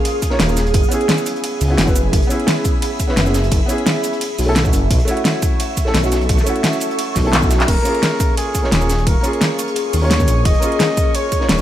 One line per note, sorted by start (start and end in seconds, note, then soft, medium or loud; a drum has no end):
0.00 0.19 A#3 medium
0.00 0.20 C#4 medium
0.00 0.21 F4 medium
0.00 0.22 G#4 loud
0.00 4.17 G#4 medium
0.00 0.70 F5 medium
0.00 0.72 D#6 medium
0.05 closed hi-hat medium
0.05 closed hi-hat loud
0.05 ride bell medium
0.22 kick medium
0.22 closed hi-hat medium
0.22 cabasa medium
0.30 0.39 A#3 medium
0.30 0.40 C#4 medium
0.30 0.40 F4 medium
0.30 0.41 C#5 medium
0.30 snare soft
0.40 0.73 D#1 medium
0.40 snare loud
0.40 closed hi-hat loud
0.40 closed hi-hat medium
0.40 ride bell medium
0.47 0.56 A#3 medium
0.47 0.57 C#4 medium
0.47 0.57 F4 medium
0.47 0.58 G#4 medium
0.47 cabasa soft
0.57 snare medium
0.57 closed hi-hat medium
0.57 cabasa medium
0.67 closed hi-hat soft
0.74 0.83 F#1 loud
0.74 4.18 E5 medium
0.74 4.18 B5 medium
0.74 kick loud
0.74 closed hi-hat medium
0.74 closed hi-hat loud
0.74 ride bell medium
0.83 cabasa soft
0.88 1.58 B3 medium
0.88 1.59 C#4 medium
0.88 1.60 E4 medium
0.88 closed hi-hat medium
0.88 cabasa medium
0.94 1.61 G#4 loud
1.01 closed hi-hat soft
1.09 snare loud
1.09 closed hi-hat medium
1.09 ride bell medium
1.18 closed hi-hat soft
1.18 cabasa soft
1.26 closed hi-hat medium
1.26 cabasa medium
1.36 closed hi-hat soft
1.44 closed hi-hat medium
1.44 ride bell medium
1.61 1.77 C#2 loud
1.61 closed hi-hat medium
1.61 open hi-hat medium
1.61 cabasa medium
1.68 1.84 B3 medium
1.68 1.85 C#4 medium
1.68 1.85 E4 medium
1.68 1.86 F#4 medium
1.78 2.12 F#1 medium
1.78 snare loud
1.78 closed hi-hat medium
1.78 ride bell medium
1.86 1.95 B3 medium
1.86 1.95 C#4 medium
1.86 1.96 E4 medium
1.86 1.96 B4 medium
1.86 kick loud
1.86 cabasa soft
1.95 closed hi-hat medium
1.95 cabasa medium
2.13 2.21 F#1 loud
2.13 kick loud
2.13 closed hi-hat medium
2.13 ride bell medium
2.22 closed hi-hat soft
2.27 2.96 B3 medium
2.27 2.98 C#4 medium
2.27 closed hi-hat medium
2.27 cabasa medium
2.31 2.98 E4 medium
2.31 3.00 G#4 medium
2.40 closed hi-hat soft
2.47 snare loud
2.47 closed hi-hat medium
2.47 ride bell medium
2.64 kick loud
2.64 closed hi-hat medium
2.64 cabasa medium
2.82 closed hi-hat medium
2.82 ride bell medium
3.00 kick medium
3.00 closed hi-hat medium
3.00 cabasa medium
3.07 3.16 B3 medium
3.07 3.17 C#4 medium
3.07 3.17 E4 medium
3.07 3.18 B4 medium
3.07 snare soft
3.17 3.50 F#1 medium
3.17 snare loud
3.17 closed hi-hat medium
3.17 ride bell medium
3.25 3.34 B3 medium
3.25 3.34 C#4 medium
3.25 3.35 E4 medium
3.25 3.35 G#4 medium
3.25 cabasa soft
3.34 snare medium
3.34 closed hi-hat medium
3.34 cabasa medium
3.44 closed hi-hat soft
3.51 3.60 F#1 loud
3.51 kick loud
3.51 closed hi-hat medium
3.51 ride bell medium
3.66 4.19 B3 medium
3.66 4.20 C#4 medium
3.66 closed hi-hat medium
3.66 cabasa medium
3.70 4.21 E4 medium
3.70 4.22 G#4 loud
3.78 closed hi-hat soft
3.86 snare loud
3.86 closed hi-hat medium
3.86 ride bell medium
4.03 closed hi-hat medium
4.03 cabasa medium
4.13 closed hi-hat soft
4.21 7.64 A4 medium
4.21 7.64 E5 medium
4.21 7.64 C#6 medium
4.21 closed hi-hat medium
4.21 ride bell medium
4.39 4.72 B1 medium
4.39 closed hi-hat medium
4.39 open hi-hat medium
4.39 cabasa medium
4.46 4.55 A3 medium
4.46 4.56 C#4 medium
4.46 4.56 E4 medium
4.46 4.57 A4 loud
4.55 snare loud
4.55 closed hi-hat medium
4.55 ride bell medium
4.63 4.72 A3 medium
4.63 4.73 C#4 medium
4.63 4.73 E4 medium
4.63 4.74 F#4 medium
4.63 kick loud
4.63 cabasa soft
4.73 4.89 F#1 loud
4.73 closed hi-hat medium
4.73 cabasa medium
4.91 4.99 B1 loud
4.91 kick loud
4.91 closed hi-hat medium
4.91 closed hi-hat loud
4.91 ride bell medium
5.00 closed hi-hat soft
5.05 5.74 A3 loud
5.05 5.75 C#4 medium
5.05 5.76 E4 medium
5.05 closed hi-hat medium
5.05 cabasa medium
5.11 5.77 F#4 loud
5.17 closed hi-hat soft
5.25 snare loud
5.25 closed hi-hat medium
5.25 closed hi-hat loud
5.25 ride bell medium
5.42 kick loud
5.42 closed hi-hat medium
5.42 cabasa medium
5.60 closed hi-hat loud
5.60 ride bell medium
5.77 kick medium
5.77 closed hi-hat medium
5.77 cabasa medium
5.85 5.94 A3 medium
5.85 5.95 C#4 medium
5.85 5.95 E4 medium
5.85 5.95 A4 medium
5.85 snare soft
5.95 6.28 B1 medium
5.95 snare loud
5.95 closed hi-hat medium
5.95 ride bell medium
6.02 6.11 A3 medium
6.02 6.12 C#4 medium
6.02 6.12 E4 medium
6.02 6.13 F#4 medium
6.02 cabasa soft
6.12 snare medium
6.12 closed hi-hat medium
6.12 cabasa medium
6.21 closed hi-hat soft
6.29 6.37 B1 loud
6.29 kick loud
6.29 closed hi-hat medium
6.29 ride bell medium
6.38 snare soft
6.38 cabasa soft
6.44 7.13 A3 medium
6.44 7.14 C#4 medium
6.44 closed hi-hat medium
6.44 cabasa medium
6.48 7.15 E4 medium
6.48 7.16 F#4 loud
6.56 closed hi-hat soft
6.64 snare loud
6.64 closed hi-hat loud
6.64 closed hi-hat medium
6.64 ride bell medium
6.73 closed hi-hat soft
6.73 cabasa soft
6.80 closed hi-hat medium
6.80 cabasa medium
6.91 closed hi-hat soft
6.99 closed hi-hat loud
6.99 closed hi-hat medium
6.99 ride bell medium
7.16 7.67 B1 medium
7.16 kick medium
7.16 snare soft
7.16 closed hi-hat medium
7.16 open hi-hat medium
7.16 cabasa medium
7.24 7.33 A3 medium
7.24 7.33 C#4 medium
7.24 7.34 E4 medium
7.24 7.34 A4 medium
7.33 snare loud
7.33 clap loud
7.33 closed hi-hat medium
7.33 ride bell medium
7.41 7.50 A3 medium
7.41 7.50 C#4 medium
7.41 7.51 E4 medium
7.41 7.51 F#4 medium
7.41 kick loud
7.41 cabasa soft
7.50 snare medium
7.50 closed hi-hat medium
7.50 cabasa medium
7.60 snare loud
7.60 clap medium
7.60 closed hi-hat soft
7.60 closed hi-hat medium
7.68 7.76 D#1 loud
7.68 11.62 G#4 medium
7.68 8.34 A#4 loud
7.68 9.74 F5 medium
7.68 11.62 C#6 medium
7.68 kick loud
7.68 closed hi-hat loud
7.68 crash medium
7.68 ride bell medium
7.77 closed hi-hat soft
7.82 8.52 A#3 loud
7.82 8.53 C#4 medium
7.82 8.53 F4 medium
7.82 closed hi-hat medium
7.82 cabasa medium
7.88 8.55 G#4 loud
7.95 closed hi-hat soft
8.03 snare loud
8.03 closed hi-hat loud
8.03 closed hi-hat medium
8.03 ride bell medium
8.20 kick loud
8.20 closed hi-hat medium
8.20 cabasa medium
8.37 8.70 G#4 loud
8.37 closed hi-hat loud
8.37 ride bell medium
8.55 kick medium
8.55 closed hi-hat medium
8.55 cabasa medium
8.62 8.71 A#3 medium
8.62 8.72 C#4 medium
8.62 8.72 F4 medium
8.62 8.73 C#5 medium
8.62 snare soft
8.72 9.06 D#1 medium
8.72 9.08 G#4 loud
8.72 snare loud
8.72 closed hi-hat loud
8.72 closed hi-hat medium
8.72 ride bell medium
8.80 8.89 A#3 medium
8.80 8.89 C#4 medium
8.80 8.90 F4 medium
8.80 8.90 G#4 medium
8.80 cabasa soft
8.90 snare medium
8.90 closed hi-hat medium
8.90 cabasa medium
8.98 closed hi-hat soft
9.07 9.15 D#1 loud
9.07 9.42 A#4 loud
9.07 kick loud
9.07 closed hi-hat loud
9.07 closed hi-hat medium
9.07 ride bell medium
9.21 9.90 A#3 medium
9.21 9.91 C#4 medium
9.21 closed hi-hat medium
9.21 cabasa medium
9.25 9.92 F4 medium
9.25 9.93 G#4 loud
9.33 closed hi-hat soft
9.41 snare loud
9.41 closed hi-hat loud
9.41 closed hi-hat medium
9.41 ride bell medium
9.59 closed hi-hat medium
9.59 cabasa medium
9.68 closed hi-hat soft
9.76 11.62 D#5 medium
9.76 closed hi-hat medium
9.76 closed hi-hat loud
9.76 ride bell medium
9.93 10.27 D#2 medium
9.93 closed hi-hat medium
9.93 open hi-hat medium
9.93 cabasa medium
10.01 10.10 A#3 medium
10.01 10.11 C#4 medium
10.01 10.11 F4 medium
10.01 10.12 C#5 medium
10.11 10.47 C#5 loud
10.11 snare loud
10.11 closed hi-hat medium
10.11 closed hi-hat loud
10.11 ride bell medium
10.18 10.27 A#3 medium
10.18 10.28 C#4 medium
10.18 10.29 F4 medium
10.18 10.29 G#4 medium
10.18 kick loud
10.18 cabasa soft
10.28 10.44 A#1 loud
10.28 closed hi-hat medium
10.28 cabasa medium
10.45 10.54 D#1 loud
10.45 11.17 D#5 loud
10.45 kick loud
10.45 closed hi-hat loud
10.45 closed hi-hat medium
10.45 ride bell medium
10.54 closed hi-hat soft
10.60 11.29 A#3 medium
10.60 11.30 C#4 medium
10.60 closed hi-hat medium
10.60 cabasa medium
10.64 11.31 F4 medium
10.64 11.32 G#4 loud
10.72 closed hi-hat soft
10.80 snare loud
10.80 closed hi-hat medium
10.80 closed hi-hat loud
10.80 ride bell medium
10.97 kick loud
10.97 closed hi-hat medium
10.97 cabasa medium
11.15 11.49 C#5 loud
11.15 closed hi-hat loud
11.15 closed hi-hat medium
11.15 ride bell medium
11.32 kick medium
11.32 closed hi-hat medium
11.32 cabasa medium
11.40 11.49 A#3 medium
11.40 11.49 C#4 medium
11.40 11.50 F4 medium
11.40 11.50 C#5 medium
11.40 snare soft
11.49 11.62 D#1 medium
11.49 11.62 C#5 loud
11.49 snare loud
11.49 closed hi-hat medium
11.49 ride bell medium
11.57 11.62 A#3 medium
11.57 11.62 C#4 medium
11.57 cabasa soft